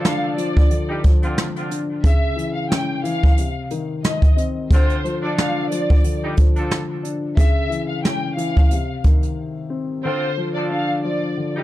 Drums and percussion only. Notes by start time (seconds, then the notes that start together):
0.05 cross-stick, snare, closed hi-hat
0.38 closed hi-hat
0.57 kick
0.71 closed hi-hat
1.04 kick, closed hi-hat
1.23 closed hi-hat
1.38 cross-stick, snare, closed hi-hat
1.56 closed hi-hat
1.71 closed hi-hat
2.04 kick, closed hi-hat
2.39 closed hi-hat
2.71 cross-stick, snare, closed hi-hat
3.05 closed hi-hat
3.23 kick
3.37 closed hi-hat
3.71 closed hi-hat
4.04 cross-stick, snare, closed hi-hat
4.22 kick, closed hi-hat
4.38 closed hi-hat
4.71 kick, closed hi-hat
4.90 closed hi-hat
5.05 closed hi-hat
5.38 cross-stick, snare, closed hi-hat
5.72 closed hi-hat
5.90 kick
6.04 closed hi-hat
6.37 kick, closed hi-hat
6.56 closed hi-hat
6.71 cross-stick, snare, closed hi-hat
7.05 closed hi-hat
7.37 kick, closed hi-hat
7.72 closed hi-hat
8.05 cross-stick, snare, closed hi-hat
8.38 closed hi-hat
8.57 kick
8.71 closed hi-hat
9.04 kick, closed hi-hat
9.23 closed hi-hat